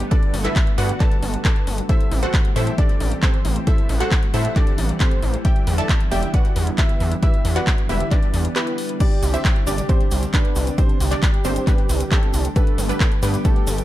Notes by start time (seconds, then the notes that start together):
Already playing: D3 G3 A3 B3
0.00 closed hi-hat
0.11 D4 F#4 A4 B4 D5, kick, closed hi-hat
0.23 closed hi-hat
0.34 G1, open hi-hat
0.44 E4 A4 B4 E5, clap, closed hi-hat
0.56 kick, clap, closed hi-hat
0.67 closed hi-hat
0.78 G2 F#4 B4 D5 F#5, open hi-hat
0.89 closed hi-hat
1.00 A4 B4 D5 A5, kick, clap, closed hi-hat
1.11 closed hi-hat
1.23 G1, open hi-hat
1.34 closed hi-hat
1.45 A4 B4 D5 A5, kick, clap, closed hi-hat
1.56 closed hi-hat
1.67 G1, open hi-hat
1.78 closed hi-hat
1.89 E3 G3 A3 C4 E4 G4 A4 C5 E5, kick, closed hi-hat
2.00 closed hi-hat
2.12 A1, open hi-hat
2.23 F#4 A4 C5 F#5, closed hi-hat
2.34 kick, clap, closed hi-hat
2.45 closed hi-hat
2.56 A2 E4 A4 C5 E5, open hi-hat
2.67 closed hi-hat
2.78 D4 G4 A4 D5, kick, closed hi-hat
2.89 closed hi-hat
3.00 A1, open hi-hat
3.12 closed hi-hat
3.23 C4 G4 A4 C5, kick, clap, closed hi-hat
3.34 closed hi-hat
3.45 A1, open hi-hat
3.56 closed hi-hat
3.67 E4 A4 C5 E5 F#5, kick, closed hi-hat
3.78 closed hi-hat
3.89 A1, open hi-hat
4.00 F#4 A4 C5 F#5, clap, closed hi-hat
4.12 kick, clap, closed hi-hat
4.23 closed hi-hat
4.34 A2 E4 A4 C5 E5, open hi-hat
4.45 closed hi-hat
4.56 D4 G4 A4 D5, kick, clap, closed hi-hat
4.67 closed hi-hat
4.78 A1, open hi-hat
4.89 closed hi-hat
5.00 C4 G4 A4 C5, kick, clap, closed hi-hat
5.11 closed hi-hat
5.22 A1, open hi-hat
5.34 closed hi-hat
5.45 D3 B3 E4 G4 D5 E5 G5, kick, closed hi-hat
5.56 closed hi-hat
5.67 E2, open hi-hat
5.78 A4 D5 E5 A5, closed hi-hat
5.89 kick, clap, closed hi-hat
6.00 closed hi-hat
6.11 E1 G4 D5 E5 G5, open hi-hat
6.23 closed hi-hat
6.34 F#4 B4 D5 F#5, kick, closed hi-hat
6.45 closed hi-hat
6.56 E2, open hi-hat
6.67 closed hi-hat
6.78 E4 G4 B4 E5, kick, clap, closed hi-hat
6.89 closed hi-hat
7.00 E2, open hi-hat
7.12 closed hi-hat
7.23 D4 E4 G4 B4 E5, kick, closed hi-hat
7.34 closed hi-hat
7.45 E2, open hi-hat
7.56 F#4 B4 D5 F#5, clap, closed hi-hat
7.67 kick, clap, closed hi-hat
7.78 closed hi-hat
7.89 E1 E4 G4 B4 E5, open hi-hat
8.00 closed hi-hat
8.11 D4 G4 B4 D5, kick, clap, closed hi-hat
8.23 closed hi-hat
8.34 E2, open hi-hat
8.45 closed hi-hat
8.56 B3 E4 G4 B4, clap, closed hi-hat
8.67 closed hi-hat
8.78 open hi-hat
8.89 closed hi-hat
9.00 C3 D4 G4 D5, kick, closed hi-hat, crash, shaker
9.12 closed hi-hat
9.23 C2, open hi-hat, shaker
9.34 E4 G4 C5 E5, closed hi-hat, shaker
9.45 kick, clap, closed hi-hat, shaker
9.56 closed hi-hat
9.67 G1 D4 G4 D5, open hi-hat, shaker
9.77 closed hi-hat, shaker
9.89 C4 D4 G4 C5, kick, closed hi-hat, shaker
10.01 closed hi-hat
10.11 C2, open hi-hat, shaker
10.23 closed hi-hat, shaker
10.33 B3 D4 G4 B4, kick, clap, closed hi-hat, shaker
10.45 closed hi-hat
10.56 C2, open hi-hat, shaker
10.67 closed hi-hat, shaker
10.78 C4 D4 G4 C5, kick, closed hi-hat, shaker
10.89 closed hi-hat
11.00 C2 G4, open hi-hat, shaker
11.11 D4 G4 D5, clap, closed hi-hat, shaker
11.23 kick, clap, closed hi-hat, shaker
11.34 closed hi-hat
11.45 G1 C4 D4 G4 C5, open hi-hat, shaker
11.56 closed hi-hat, shaker
11.67 B3 D4 G4 B4, kick, clap, closed hi-hat, shaker
11.78 closed hi-hat
11.89 C2, open hi-hat, shaker
12.00 closed hi-hat, shaker
12.11 A3 C4 D4 A4, kick, clap, closed hi-hat, shaker
12.23 closed hi-hat
12.33 C2, open hi-hat, shaker
12.44 closed hi-hat, shaker
12.56 G3 A3 B3 D4 G4 A4 B4, kick, closed hi-hat, shaker
12.67 closed hi-hat
12.78 G1, open hi-hat, shaker
12.89 B3 D4 G4 B4, closed hi-hat, shaker
13.00 kick, clap, closed hi-hat, shaker
13.12 closed hi-hat
13.22 G2 B3 D4 G4 B4, open hi-hat, shaker
13.34 closed hi-hat, shaker
13.45 A3 B3 D4 A4, kick, closed hi-hat, shaker
13.56 closed hi-hat
13.67 G1, open hi-hat, shaker
13.78 closed hi-hat, shaker